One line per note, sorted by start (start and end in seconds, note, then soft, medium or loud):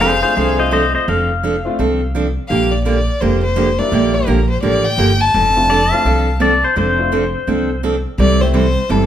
0.00 0.22 F1 medium
0.00 0.12 F3 medium
0.00 0.12 C4 medium
0.00 0.13 D4 medium
0.00 0.21 G#4 medium
0.00 0.13 A4 medium
0.00 0.22 C5 medium
0.00 0.90 F5 loud
0.23 0.56 A3 medium
0.23 0.56 C4 medium
0.23 0.57 D4 medium
0.23 0.57 F4 medium
0.23 0.35 G#4 medium
0.23 0.36 C5 medium
0.36 0.94 C2 medium
0.36 0.58 F3 medium
0.36 0.58 C4 medium
0.36 0.58 D4 medium
0.36 0.57 G#4 medium
0.36 0.58 A4 medium
0.36 0.58 C5 medium
0.58 1.05 A3 medium
0.58 1.05 C4 medium
0.58 1.05 D4 medium
0.58 1.06 F4 medium
0.58 0.71 C5 medium
0.58 0.72 D#5 medium
0.71 0.83 F3 medium
0.71 0.83 C4 medium
0.71 0.83 D4 medium
0.71 0.83 A4 medium
0.71 0.93 C5 medium
0.71 0.94 D#5 medium
0.95 1.07 C5 medium
0.95 1.08 D#5 medium
1.08 1.65 F1 medium
1.08 1.29 F3 medium
1.08 1.29 C4 medium
1.08 1.30 D4 medium
1.08 1.29 A4 medium
1.08 2.12 F5 medium
1.43 1.55 F3 medium
1.43 1.55 C4 medium
1.43 1.55 D4 medium
1.43 1.55 A4 medium
1.65 1.77 A3 medium
1.65 1.77 C4 medium
1.65 1.78 D4 medium
1.65 1.78 F4 medium
1.79 2.36 C2 medium
1.79 2.00 F3 medium
1.79 2.00 C4 medium
1.79 2.00 D4 medium
1.79 2.01 A4 medium
2.15 2.26 F3 medium
2.15 2.26 C4 medium
2.15 2.26 D4 medium
2.15 2.26 A4 medium
2.48 3.07 A#1 medium
2.48 2.71 D3 medium
2.48 2.71 F3 medium
2.48 2.70 G3 medium
2.48 2.70 A#3 soft
2.48 2.71 A#3 medium
2.48 2.72 D4 medium
2.48 2.71 D4 soft
2.48 2.71 F4 medium
2.48 2.72 G4 medium
2.48 2.73 F5 medium
2.71 2.83 D5 medium
2.84 2.97 D3 medium
2.84 2.97 F3 medium
2.84 2.97 A#3 medium
2.84 2.97 D4 medium
2.84 2.97 G4 medium
2.84 3.23 D5 medium
3.21 3.78 F1 medium
3.21 3.42 D3 medium
3.21 3.43 F3 medium
3.21 3.43 A#3 medium
3.21 3.43 D4 medium
3.21 3.43 G4 medium
3.21 3.43 C5 medium
3.43 3.80 C5 medium
3.56 3.68 D3 medium
3.56 3.68 F3 medium
3.56 3.68 A#3 medium
3.56 3.68 D4 medium
3.56 3.68 G4 medium
3.79 4.25 G3 medium
3.79 4.25 A#3 medium
3.79 4.26 D4 medium
3.79 4.26 E4 medium
3.79 4.16 D5 medium
3.91 4.21 A#1 medium
3.91 4.13 D3 medium
3.91 4.13 F3 medium
3.91 4.14 A#3 medium
3.91 4.14 D4 medium
3.91 4.14 G4 medium
4.14 4.49 A#4 medium
4.26 4.58 A#1 medium
4.26 4.38 D3 medium
4.26 4.39 F3 medium
4.26 4.39 A#3 medium
4.26 4.39 D4 medium
4.26 4.39 G4 medium
4.50 4.62 C5 medium
4.62 4.93 A1 medium
4.62 4.84 D3 medium
4.62 4.84 F3 medium
4.62 4.84 A#3 medium
4.62 4.84 D4 medium
4.62 4.85 G4 medium
4.62 4.85 D5 medium
4.84 5.22 G5 loud
4.98 5.28 G1 medium
4.98 5.10 D3 medium
4.98 5.10 F3 medium
4.98 5.10 A#3 medium
4.98 5.10 D4 medium
4.98 5.10 G4 medium
5.21 6.63 A5 loud
5.34 5.91 F1 medium
5.34 5.55 F3 medium
5.34 5.56 C4 medium
5.34 5.56 D4 medium
5.34 5.56 A4 medium
5.56 5.68 A3 medium
5.56 5.69 C4 medium
5.56 5.69 D4 medium
5.56 5.69 F4 medium
5.70 5.81 F3 medium
5.70 5.81 C4 medium
5.70 5.81 D4 medium
5.70 5.82 A4 medium
5.70 5.92 D5 medium
5.92 6.04 A3 medium
5.92 6.04 C4 medium
5.92 6.05 D4 medium
5.92 6.05 F4 medium
5.92 6.40 F5 medium
6.05 6.62 C2 medium
6.05 6.27 F3 medium
6.05 6.27 C4 medium
6.05 6.27 D4 medium
6.05 6.27 A4 medium
6.40 6.52 F3 medium
6.40 6.52 C4 medium
6.40 6.52 D4 medium
6.40 6.52 A4 medium
6.40 6.63 D5 medium
6.64 6.77 C5 medium
6.76 7.34 F1 loud
6.76 6.98 F3 medium
6.76 6.98 C4 medium
6.76 6.98 D4 medium
6.76 6.98 A4 medium
6.76 7.81 C5 medium
6.98 7.11 A3 medium
6.98 7.11 C4 medium
6.98 7.11 D4 medium
6.98 7.11 F4 medium
7.12 7.23 F3 medium
7.12 7.24 C4 medium
7.12 7.24 D4 medium
7.12 7.24 A4 medium
7.47 8.05 C2 medium
7.47 7.69 F3 medium
7.47 7.69 C4 medium
7.47 7.69 D4 medium
7.47 7.70 A4 medium
7.83 7.95 F3 medium
7.83 7.95 C4 medium
7.83 7.95 D4 medium
7.83 7.95 A4 medium
8.18 8.75 C2 medium
8.18 8.40 C3 soft
8.18 8.40 E3 medium
8.18 8.40 G3 medium
8.18 8.40 C4 medium
8.18 8.41 E4 medium
8.18 8.41 A4 medium
8.18 8.43 D5 medium
8.41 8.53 A3 medium
8.41 8.53 C4 medium
8.41 8.53 E4 medium
8.41 8.54 G4 medium
8.41 8.53 C5 medium
8.53 8.65 C3 medium
8.53 8.65 E3 medium
8.53 8.65 G3 medium
8.53 8.66 C4 medium
8.53 8.66 E4 medium
8.53 8.66 A4 medium
8.53 8.92 C5 medium
8.89 9.06 G1 medium
8.89 9.06 C3 medium
8.89 9.06 E3 medium
8.89 9.06 G3 medium
8.89 9.06 C4 medium
8.89 9.06 E4 medium
8.89 9.06 A4 medium